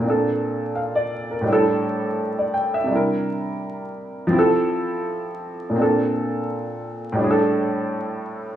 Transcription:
0, 0, Header, 1, 2, 480
1, 0, Start_track
1, 0, Tempo, 714286
1, 25, Time_signature, 4, 2, 24, 8
1, 5753, End_track
2, 0, Start_track
2, 0, Title_t, "Upright piano"
2, 0, Program_c, 0, 0
2, 0, Control_c, 0, 64, 127
2, 0, Note_on_c, 0, 46, 58
2, 7, Note_on_c, 0, 58, 55
2, 27, Note_on_c, 0, 60, 51
2, 34, Control_c, 0, 64, 0
2, 46, Note_on_c, 0, 62, 50
2, 65, Note_on_c, 0, 69, 65
2, 167, Control_c, 0, 64, 127
2, 506, Note_on_c, 0, 77, 57
2, 516, Note_off_c, 0, 69, 0
2, 634, Note_off_c, 0, 77, 0
2, 640, Note_on_c, 0, 74, 69
2, 868, Note_off_c, 0, 74, 0
2, 881, Note_on_c, 0, 70, 53
2, 946, Note_off_c, 0, 46, 0
2, 949, Note_on_c, 0, 45, 66
2, 957, Note_off_c, 0, 58, 0
2, 967, Note_off_c, 0, 60, 0
2, 967, Note_on_c, 0, 55, 62
2, 976, Note_off_c, 0, 62, 0
2, 986, Note_on_c, 0, 62, 62
2, 992, Control_c, 0, 64, 0
2, 1007, Note_on_c, 0, 64, 65
2, 1026, Note_on_c, 0, 69, 79
2, 1109, Note_off_c, 0, 70, 0
2, 1111, Control_c, 0, 64, 127
2, 1603, Note_on_c, 0, 74, 54
2, 1702, Note_off_c, 0, 74, 0
2, 1705, Note_on_c, 0, 79, 62
2, 1833, Note_off_c, 0, 79, 0
2, 1842, Note_on_c, 0, 76, 66
2, 1907, Note_off_c, 0, 45, 0
2, 1908, Note_on_c, 0, 48, 58
2, 1917, Note_off_c, 0, 55, 0
2, 1926, Note_off_c, 0, 62, 0
2, 1928, Note_on_c, 0, 55, 59
2, 1937, Note_off_c, 0, 64, 0
2, 1947, Note_off_c, 0, 69, 0
2, 1948, Note_on_c, 0, 62, 55
2, 1954, Control_c, 0, 64, 0
2, 1967, Note_on_c, 0, 64, 55
2, 1986, Note_on_c, 0, 70, 69
2, 2069, Note_off_c, 0, 76, 0
2, 2089, Control_c, 0, 64, 127
2, 2867, Note_off_c, 0, 48, 0
2, 2869, Note_on_c, 0, 53, 73
2, 2877, Note_off_c, 0, 55, 0
2, 2888, Note_off_c, 0, 62, 0
2, 2890, Note_on_c, 0, 60, 64
2, 2897, Note_off_c, 0, 64, 0
2, 2907, Note_off_c, 0, 70, 0
2, 2909, Note_on_c, 0, 64, 64
2, 2915, Control_c, 0, 64, 0
2, 2929, Note_on_c, 0, 67, 58
2, 2948, Note_on_c, 0, 69, 77
2, 3025, Control_c, 0, 64, 127
2, 3827, Note_off_c, 0, 53, 0
2, 3828, Note_on_c, 0, 46, 61
2, 3838, Note_off_c, 0, 60, 0
2, 3848, Note_off_c, 0, 64, 0
2, 3848, Note_on_c, 0, 58, 57
2, 3858, Note_off_c, 0, 67, 0
2, 3868, Note_off_c, 0, 69, 0
2, 3869, Note_on_c, 0, 60, 61
2, 3874, Control_c, 0, 64, 0
2, 3887, Note_on_c, 0, 62, 57
2, 3908, Note_on_c, 0, 69, 72
2, 4003, Control_c, 0, 64, 127
2, 4787, Note_off_c, 0, 46, 0
2, 4788, Note_on_c, 0, 45, 74
2, 4797, Note_off_c, 0, 58, 0
2, 4807, Note_on_c, 0, 55, 66
2, 4808, Note_off_c, 0, 60, 0
2, 4816, Note_off_c, 0, 62, 0
2, 4827, Note_on_c, 0, 62, 69
2, 4828, Note_off_c, 0, 69, 0
2, 4833, Control_c, 0, 64, 0
2, 4847, Note_on_c, 0, 64, 59
2, 4866, Note_on_c, 0, 68, 66
2, 4895, Note_off_c, 0, 68, 0
2, 4910, Note_on_c, 0, 69, 75
2, 4949, Control_c, 0, 64, 127
2, 5747, Note_off_c, 0, 45, 0
2, 5753, Note_off_c, 0, 55, 0
2, 5753, Note_off_c, 0, 62, 0
2, 5753, Note_off_c, 0, 64, 0
2, 5753, Note_off_c, 0, 69, 0
2, 5753, End_track
0, 0, End_of_file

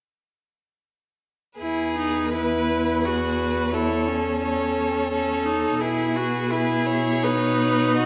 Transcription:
0, 0, Header, 1, 5, 480
1, 0, Start_track
1, 0, Key_signature, 4, "major"
1, 0, Tempo, 750939
1, 1018, Time_signature, 3, 2, 24, 8
1, 1491, Tempo, 696056
1, 4371, Tempo, 729040
1, 5390, End_track
2, 0, Start_track
2, 0, Title_t, "Violin"
2, 0, Program_c, 0, 40
2, 1016, Note_on_c, 0, 71, 28
2, 1948, Note_off_c, 0, 71, 0
2, 1978, Note_on_c, 0, 68, 28
2, 2444, Note_off_c, 0, 68, 0
2, 2455, Note_on_c, 0, 73, 31
2, 2924, Note_off_c, 0, 73, 0
2, 2938, Note_on_c, 0, 73, 31
2, 3868, Note_off_c, 0, 73, 0
2, 3896, Note_on_c, 0, 71, 32
2, 4365, Note_off_c, 0, 71, 0
2, 4373, Note_on_c, 0, 71, 38
2, 4605, Note_on_c, 0, 73, 37
2, 4615, Note_off_c, 0, 71, 0
2, 5329, Note_off_c, 0, 73, 0
2, 5336, Note_on_c, 0, 75, 39
2, 5390, Note_off_c, 0, 75, 0
2, 5390, End_track
3, 0, Start_track
3, 0, Title_t, "Violin"
3, 0, Program_c, 1, 40
3, 1019, Note_on_c, 1, 68, 25
3, 1466, Note_off_c, 1, 68, 0
3, 1492, Note_on_c, 1, 71, 29
3, 1967, Note_off_c, 1, 71, 0
3, 1981, Note_on_c, 1, 71, 25
3, 2456, Note_on_c, 1, 69, 26
3, 2466, Note_off_c, 1, 71, 0
3, 2925, Note_off_c, 1, 69, 0
3, 2930, Note_on_c, 1, 69, 29
3, 3394, Note_off_c, 1, 69, 0
3, 3414, Note_on_c, 1, 69, 30
3, 3889, Note_on_c, 1, 68, 30
3, 3899, Note_off_c, 1, 69, 0
3, 4368, Note_off_c, 1, 68, 0
3, 4372, Note_on_c, 1, 68, 36
3, 4854, Note_on_c, 1, 71, 34
3, 4864, Note_off_c, 1, 68, 0
3, 5332, Note_off_c, 1, 71, 0
3, 5336, Note_on_c, 1, 66, 32
3, 5390, Note_off_c, 1, 66, 0
3, 5390, End_track
4, 0, Start_track
4, 0, Title_t, "Viola"
4, 0, Program_c, 2, 41
4, 1019, Note_on_c, 2, 64, 29
4, 1241, Note_off_c, 2, 64, 0
4, 1263, Note_on_c, 2, 63, 28
4, 1489, Note_off_c, 2, 63, 0
4, 1496, Note_on_c, 2, 64, 28
4, 1985, Note_on_c, 2, 66, 27
4, 1996, Note_off_c, 2, 64, 0
4, 2447, Note_off_c, 2, 66, 0
4, 2451, Note_on_c, 2, 64, 31
4, 2700, Note_on_c, 2, 61, 29
4, 2711, Note_off_c, 2, 64, 0
4, 3408, Note_off_c, 2, 61, 0
4, 3412, Note_on_c, 2, 61, 34
4, 3645, Note_on_c, 2, 63, 34
4, 3655, Note_off_c, 2, 61, 0
4, 3884, Note_on_c, 2, 64, 35
4, 3894, Note_off_c, 2, 63, 0
4, 4132, Note_on_c, 2, 66, 34
4, 4142, Note_off_c, 2, 64, 0
4, 4370, Note_on_c, 2, 64, 34
4, 4380, Note_off_c, 2, 66, 0
4, 4849, Note_on_c, 2, 63, 40
4, 4859, Note_off_c, 2, 64, 0
4, 5390, Note_off_c, 2, 63, 0
4, 5390, End_track
5, 0, Start_track
5, 0, Title_t, "Cello"
5, 0, Program_c, 3, 42
5, 1021, Note_on_c, 3, 40, 27
5, 3859, Note_off_c, 3, 40, 0
5, 3886, Note_on_c, 3, 47, 33
5, 5390, Note_off_c, 3, 47, 0
5, 5390, End_track
0, 0, End_of_file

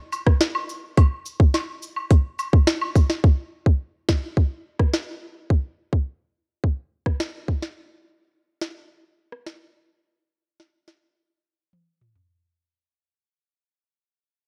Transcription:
0, 0, Header, 1, 2, 480
1, 0, Start_track
1, 0, Tempo, 566038
1, 827, Time_signature, 4, 2, 24, 8
1, 12271, End_track
2, 0, Start_track
2, 0, Title_t, "Drums"
2, 107, Note_on_c, 9, 69, 75
2, 107, Note_on_c, 9, 76, 77
2, 192, Note_off_c, 9, 69, 0
2, 192, Note_off_c, 9, 76, 0
2, 227, Note_on_c, 9, 36, 92
2, 227, Note_on_c, 9, 37, 94
2, 311, Note_off_c, 9, 37, 0
2, 312, Note_off_c, 9, 36, 0
2, 346, Note_on_c, 9, 38, 124
2, 346, Note_on_c, 9, 42, 82
2, 431, Note_off_c, 9, 38, 0
2, 431, Note_off_c, 9, 42, 0
2, 466, Note_on_c, 9, 76, 83
2, 551, Note_off_c, 9, 76, 0
2, 587, Note_on_c, 9, 69, 77
2, 672, Note_off_c, 9, 69, 0
2, 826, Note_on_c, 9, 42, 73
2, 827, Note_on_c, 9, 36, 118
2, 827, Note_on_c, 9, 76, 82
2, 911, Note_off_c, 9, 42, 0
2, 912, Note_off_c, 9, 36, 0
2, 912, Note_off_c, 9, 76, 0
2, 1066, Note_on_c, 9, 69, 82
2, 1150, Note_off_c, 9, 69, 0
2, 1186, Note_on_c, 9, 36, 99
2, 1271, Note_off_c, 9, 36, 0
2, 1307, Note_on_c, 9, 38, 73
2, 1307, Note_on_c, 9, 76, 74
2, 1309, Note_on_c, 9, 42, 86
2, 1391, Note_off_c, 9, 38, 0
2, 1392, Note_off_c, 9, 76, 0
2, 1393, Note_off_c, 9, 42, 0
2, 1546, Note_on_c, 9, 69, 84
2, 1630, Note_off_c, 9, 69, 0
2, 1665, Note_on_c, 9, 76, 69
2, 1750, Note_off_c, 9, 76, 0
2, 1785, Note_on_c, 9, 42, 87
2, 1786, Note_on_c, 9, 36, 104
2, 1870, Note_off_c, 9, 42, 0
2, 1871, Note_off_c, 9, 36, 0
2, 2026, Note_on_c, 9, 69, 75
2, 2026, Note_on_c, 9, 76, 76
2, 2111, Note_off_c, 9, 69, 0
2, 2111, Note_off_c, 9, 76, 0
2, 2147, Note_on_c, 9, 36, 93
2, 2231, Note_off_c, 9, 36, 0
2, 2265, Note_on_c, 9, 38, 123
2, 2265, Note_on_c, 9, 42, 81
2, 2350, Note_off_c, 9, 38, 0
2, 2350, Note_off_c, 9, 42, 0
2, 2386, Note_on_c, 9, 76, 81
2, 2471, Note_off_c, 9, 76, 0
2, 2506, Note_on_c, 9, 36, 88
2, 2506, Note_on_c, 9, 69, 77
2, 2591, Note_off_c, 9, 36, 0
2, 2591, Note_off_c, 9, 69, 0
2, 2626, Note_on_c, 9, 38, 71
2, 2711, Note_off_c, 9, 38, 0
2, 2747, Note_on_c, 9, 36, 112
2, 2832, Note_off_c, 9, 36, 0
2, 3106, Note_on_c, 9, 36, 90
2, 3191, Note_off_c, 9, 36, 0
2, 3466, Note_on_c, 9, 36, 86
2, 3466, Note_on_c, 9, 38, 105
2, 3550, Note_off_c, 9, 38, 0
2, 3551, Note_off_c, 9, 36, 0
2, 3706, Note_on_c, 9, 36, 94
2, 3791, Note_off_c, 9, 36, 0
2, 4066, Note_on_c, 9, 37, 86
2, 4067, Note_on_c, 9, 36, 85
2, 4151, Note_off_c, 9, 37, 0
2, 4152, Note_off_c, 9, 36, 0
2, 4185, Note_on_c, 9, 38, 122
2, 4270, Note_off_c, 9, 38, 0
2, 4667, Note_on_c, 9, 36, 108
2, 4752, Note_off_c, 9, 36, 0
2, 5026, Note_on_c, 9, 36, 90
2, 5111, Note_off_c, 9, 36, 0
2, 5627, Note_on_c, 9, 36, 97
2, 5712, Note_off_c, 9, 36, 0
2, 5987, Note_on_c, 9, 37, 84
2, 5988, Note_on_c, 9, 36, 87
2, 6072, Note_off_c, 9, 36, 0
2, 6072, Note_off_c, 9, 37, 0
2, 6106, Note_on_c, 9, 38, 116
2, 6191, Note_off_c, 9, 38, 0
2, 6347, Note_on_c, 9, 36, 87
2, 6431, Note_off_c, 9, 36, 0
2, 6466, Note_on_c, 9, 38, 63
2, 6551, Note_off_c, 9, 38, 0
2, 7305, Note_on_c, 9, 38, 99
2, 7390, Note_off_c, 9, 38, 0
2, 7907, Note_on_c, 9, 37, 85
2, 7991, Note_off_c, 9, 37, 0
2, 8026, Note_on_c, 9, 38, 114
2, 8111, Note_off_c, 9, 38, 0
2, 8988, Note_on_c, 9, 38, 64
2, 9072, Note_off_c, 9, 38, 0
2, 9226, Note_on_c, 9, 38, 98
2, 9310, Note_off_c, 9, 38, 0
2, 9948, Note_on_c, 9, 48, 54
2, 10033, Note_off_c, 9, 48, 0
2, 10188, Note_on_c, 9, 45, 88
2, 10273, Note_off_c, 9, 45, 0
2, 10308, Note_on_c, 9, 43, 83
2, 10393, Note_off_c, 9, 43, 0
2, 12271, End_track
0, 0, End_of_file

